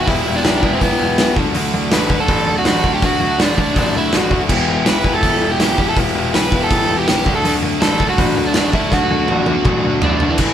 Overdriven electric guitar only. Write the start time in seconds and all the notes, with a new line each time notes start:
0.07 E4 E5
0.36 D4 D5
0.74 C4 C5
0.83 B3 B4
1.93 B4 B5
2.20 A4 A5
2.58 F#4 F#5
2.67 F#4 F#5
2.95 G4 G5
3.05 F#4 F#5
3.42 D4 D5
3.78 D4 D5
3.97 E4 E5
4.14 F#4 F#5
4.87 B4 B5
5.15 A4 A5
5.51 G4 G5
5.60 G4 G5
5.89 A4 A5
6.35 B4 B5
6.63 A4 A5
6.98 G4 G5
7.08 G4 G5
7.35 A4 A5
7.82 A4 A5
8.09 F#4 F#5
8.47 D4 D5
8.55 D4 D5
8.74 E4 E5
8.93 F#4 F#5
10.03 D4 D5
10.30 E3 E4